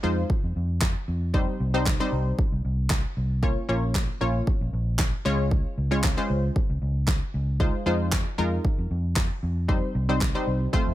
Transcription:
0.03 F2 G#3 D#4 F4 C5
0.30 kick
0.44 F2
0.56 F2
0.82 kick, snare, clap
1.08 F2
1.34 G3 C4 D#4 C5, kick
1.60 C2
1.74 G3 C4 D#4 C5
1.86 kick, snare, clap
2.00 G3 C4 D#4 C5
2.12 C2
2.39 kick
2.52 C2
2.65 C2
2.90 kick, snare, clap
3.17 C2
3.43 A#3 C#4 F4 C#5, kick
3.69 A#1 A#3 C#4 F4 C#5
3.95 kick, snare, clap
4.21 A#1 A#3 C#4 F4 C#5
4.47 kick
4.61 A#1
4.73 A#1
4.99 kick, snare, clap
5.25 C#2 G#3 C#4 F4 C#5
5.51 kick
5.78 C#2
5.91 G#3 C#4 F4 C#5
6.04 kick, snare, clap
6.17 G#3 C#4 F4 C5
6.30 C#2
6.56 kick
6.70 C#2
6.82 C#2
7.08 kick, snare, clap
7.34 C#2
7.60 G#3 D#4 F4 C5, kick
7.86 F2 G#3 D#4 F4 C5
8.12 kick, snare, clap
8.38 F2 G#3 D#4 F4 A#4
8.65 kick
8.78 F2
8.91 F2
9.16 kick, snare, clap
9.43 F2
9.68 G3 C4 D#4 C5, kick
9.95 C2
10.09 G3 C4 D#4 C5
10.21 kick, snare, clap
10.35 G3 C4 D#4 C5
10.47 C2
10.73 A3 C4 F4 C5, kick
10.87 F2

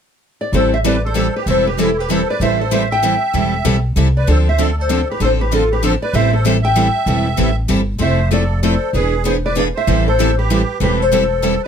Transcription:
0.41 D5
0.52 A1 E3 G3 C4 E4 A4 C5
0.72 C5 E5
0.84 E3 G3 C4 E4 A4 B4 D5
1.04 A4 C5
1.14 E3 G3 C4 E4 A4
1.36 G4 B4
1.46 E1 E3 G3 C4 E4 A4 C5
1.66 G4 B4
1.78 E3 G3 C4 E4 A4
1.97 G4 B4
2.10 E3 G3 C4 E4 A4 C5
2.28 B4 D5
2.40 A1 E3 G3 C4 E4 A4 C5 E5
2.59 A4 C5
2.71 E3 G3 C4 E4 A4 C5 E5
2.90 E5 G5
3.03 E3 G3 C4 E4 A4
3.33 E1 E3 G3 C4 E4 A4
3.65 B1 E3 G3 C4 E4 A4
3.96 C2 E3 G3 C4 E4 A4
4.17 B4 D5
4.27 D2 D3 F3 C4 D4 A4 C5
4.48 C5 E5
4.58 D3 F3 C4 D4 A4
4.63 D5
4.77 A4 C5
4.89 D3 F3 C4 D4 A4
5.09 G4 B4
5.20 A1 D3 F3 C4 D4 A4
5.24 C5
5.40 G4 B4
5.52 D3 F3 C4 D4 F4 A4
5.71 G4 B4
5.83 D3 F3 C4 D4 A4 C5
6.02 B4 D5
6.13 A1 E3 G3 C4 E4 A4 C5 E5
6.33 A4 C5
6.45 E3 G3 C4 E4 A4 C5 E5
6.62 E5 G5
6.76 E3 G3 C4 E4 A4
7.06 E1 E3 G3 C4 E4 A4
7.37 A1 E3 G3 C4 E4 A4
7.68 G1 E3 G3 C4 E4 A4
7.98 F1 F3 A3 C4 E4 A4 C5 E5
8.31 F3 A3 C4 E4 A4 D5
8.62 F3 A3 C4 E4 A4 C5
8.93 E1 E3 B3 D4 G#4 B4
9.24 E3 B3 D4 G#4 B4 C5
9.44 B4 D5
9.55 E3 B3 D4 G#4 B4 D5
9.60 F5
9.75 C5 E5
9.87 A1 E3 G3 C4 E4 A4
10.07 A4 C5
10.19 E3 G3 C4 E4 A4
10.38 G4 B4
10.50 E3 G3 C4 E4 A4
10.80 E1 E3 G3 C4 E4 G4 A4 B4
11.00 A4 C5
11.12 E3 G3 C4 E4 A4
11.42 E3 G3 C4 E4 A4
11.63 B4

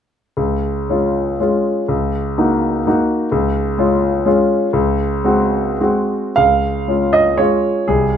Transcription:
0.37 C#2
0.90 G#3 C#4 F4
1.40 G#3 C#4 F4
1.88 C#2
2.38 A#3 D#4 F#4
2.87 A#3 D#4 F#4
3.32 C#2
3.78 G#3 C#4 F4
4.26 G#3 C#4 F4
4.73 C#2
5.24 G#3 C4 F#4
5.81 G#3 C4 F#4
6.36 C#2 F5
6.88 G#3 C#4 F4
7.13 D#5
7.37 G#3 C#4 F4 C#5
7.88 C2 G#4

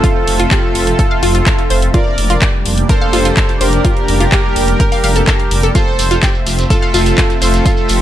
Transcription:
Already playing: A3 C4 F4 A4 C5 E5, downlifter
0.04 F4 F5, kick, closed hi-hat
0.27 F1, open hi-hat
0.40 F4 F5, closed hi-hat
0.51 G4 G5, kick, clap, closed hi-hat
0.75 F1, open hi-hat
0.87 closed hi-hat
0.99 A4 A5, kick, closed hi-hat
1.11 F5 F6
1.23 F1 F4 F5, open hi-hat
1.35 F4 F5, closed hi-hat
1.46 kick, clap, closed hi-hat
1.59 closed hi-hat
1.70 F1 C5 C6, open hi-hat
1.82 closed hi-hat
1.94 G3 A#3 D4 F4 G4 A#4 D5 F5, kick, closed hi-hat
2.18 F1, open hi-hat
2.30 F4 F5, closed hi-hat
2.42 G4 G5, kick, clap, closed hi-hat
2.66 F1, open hi-hat
2.78 closed hi-hat
2.89 A4 A#4 C5 A#5, kick, closed hi-hat
3.01 F5 F6
3.13 F1 F4 F5, open hi-hat
3.25 F4 F5, closed hi-hat
3.37 kick, clap, closed hi-hat
3.49 closed hi-hat
3.61 F1 G4 A#4 C5 C6, open hi-hat
3.73 closed hi-hat
3.85 F4 F5, kick, closed hi-hat
3.97 closed hi-hat
4.08 F1, open hi-hat
4.20 F4 F5, closed hi-hat
4.32 G4 G5, kick, clap, closed hi-hat
4.56 F1, open hi-hat
4.68 closed hi-hat
4.80 A#4 A#5, kick, closed hi-hat
4.92 F5 F6, open hi-hat
5.04 F1 F5 F6, open hi-hat
5.16 A4 A5, closed hi-hat
5.27 A4 A5, kick, clap, closed hi-hat
5.40 closed hi-hat
5.51 F1, open hi-hat
5.63 A4 A5, closed hi-hat
5.75 A3 C4 F4 A4 C5 E5 F5, kick, closed hi-hat, shekere
5.87 shekere
5.99 F1, open hi-hat, shekere
6.11 F4 F5, closed hi-hat, shekere
6.23 G4 G5, kick, clap, closed hi-hat, shekere
6.35 shekere
6.47 F1, open hi-hat, shekere
6.59 closed hi-hat, shekere
6.70 F4 A4 A5, kick, closed hi-hat, shekere
6.82 F5 F6, shekere
6.94 F1 F4 F5, open hi-hat, shekere
7.06 closed hi-hat, shekere
7.18 F4 F5, kick, clap, closed hi-hat, shekere
7.30 closed hi-hat, shekere
7.42 F1 F4 A4 C5 C6, open hi-hat, shekere
7.54 closed hi-hat, shekere
7.66 F4 G4 F5, kick, closed hi-hat, shekere
7.77 shekere
7.89 F1, open hi-hat, shekere

